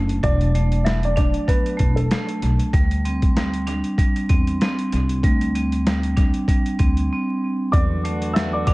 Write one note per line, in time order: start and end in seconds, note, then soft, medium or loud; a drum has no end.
0.00 0.20 F#1 medium
0.00 0.23 F#3 medium
0.00 0.55 A3 medium
0.00 1.15 D4 medium
0.09 closed hi-hat medium
0.23 1.30 E1 loud
0.23 0.83 F#3 medium
0.23 0.82 D4 medium
0.23 0.82 D5 loud
0.23 kick loud
0.23 closed hi-hat medium
0.41 closed hi-hat soft
0.55 1.76 A3 medium
0.55 closed hi-hat medium
0.72 closed hi-hat medium
0.84 1.47 F#3 medium
0.84 1.01 E4 medium
0.84 1.00 E5 medium
0.84 snare loud
0.84 closed hi-hat medium
1.03 1.16 D4 medium
1.03 1.15 D5 medium
1.03 closed hi-hat medium
1.16 2.73 D4 medium
1.16 1.45 D4 medium
1.16 1.45 D5 medium
1.16 kick medium
1.16 closed hi-hat medium
1.34 closed hi-hat soft
1.48 2.73 F#3 medium
1.48 1.94 B3 medium
1.48 1.93 B4 medium
1.48 kick loud
1.48 closed hi-hat loud
1.66 closed hi-hat medium
1.77 2.08 E1 loud
1.77 2.11 A3 medium
1.77 kick loud
1.77 closed hi-hat medium
1.96 2.25 A3 soft
1.96 2.24 A4 medium
1.96 closed hi-hat soft
2.11 2.74 A3 medium
2.11 snare loud
2.11 closed hi-hat medium
2.29 closed hi-hat medium
2.42 2.58 B1 medium
2.42 closed hi-hat medium
2.59 closed hi-hat medium
2.73 3.80 D2 loud
2.73 3.36 G3 medium
2.73 kick loud
2.73 closed hi-hat medium
2.91 closed hi-hat soft
3.05 4.28 C4 medium
3.05 closed hi-hat medium
3.22 kick medium
3.22 closed hi-hat medium
3.37 3.97 G3 medium
3.37 snare loud
3.37 closed hi-hat medium
3.54 closed hi-hat medium
3.67 6.15 D4 medium
3.67 closed hi-hat medium
3.84 closed hi-hat soft
3.98 5.23 G3 medium
3.98 kick loud
3.98 closed hi-hat loud
4.16 closed hi-hat medium
4.29 4.58 E2 loud
4.29 4.61 C4 medium
4.29 kick loud
4.29 closed hi-hat medium
4.47 closed hi-hat soft
4.61 5.54 C4 medium
4.61 snare loud
4.61 closed hi-hat medium
4.79 closed hi-hat medium
4.92 5.21 C2 medium
4.92 closed hi-hat medium
5.09 closed hi-hat medium
5.23 6.30 D2 loud
5.23 5.87 G3 medium
5.23 kick loud
5.23 closed hi-hat medium
5.41 closed hi-hat soft
5.55 6.78 C4 medium
5.55 closed hi-hat medium
5.72 closed hi-hat medium
5.87 6.47 G3 medium
5.87 snare loud
5.87 closed hi-hat medium
6.03 closed hi-hat medium
6.17 7.73 D4 medium
6.17 kick medium
6.17 closed hi-hat medium
6.34 closed hi-hat soft
6.48 7.73 G3 medium
6.48 kick loud
6.48 closed hi-hat loud
6.66 closed hi-hat medium
6.79 7.08 D2 medium
6.79 7.11 C4 medium
6.79 kick loud
6.79 closed hi-hat medium
6.97 closed hi-hat soft
7.12 7.74 C4 medium
7.72 8.74 E2 loud
7.72 8.74 D3 medium
7.72 8.34 F#3 medium
7.72 8.74 B3 medium
7.72 8.74 F#4 medium
7.72 8.32 D5 medium
7.72 8.31 D6 loud
7.72 kick loud
7.72 closed hi-hat medium
8.05 8.74 A3 medium
8.05 closed hi-hat medium
8.22 closed hi-hat medium
8.33 8.74 F#3 medium
8.33 8.50 E5 medium
8.33 8.50 E6 medium
8.33 snare loud
8.33 closed hi-hat medium
8.53 8.66 D5 medium
8.53 8.65 D6 medium
8.67 8.74 D4 loud
8.67 8.74 D5 medium
8.67 8.74 D6 medium
8.67 kick medium
8.67 closed hi-hat medium